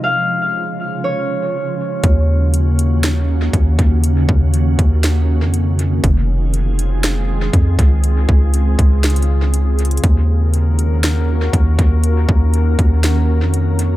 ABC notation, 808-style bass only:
X:1
M:4/4
L:1/16
Q:1/4=120
K:Ebdor
V:1 name="808-style bass" clef=bass
z16 | E,,12 E,,2 E,,2- | E,,2 E,,4 E,,4- E,, F,,4- F,, | F,,,12 F,,2 D,,2- |
D,,2 D,,4 D,,8- D,,2 | E,,12 E,,2 E,,2- | E,,2 E,,4 E,,4- E,, F,,4- F,, |]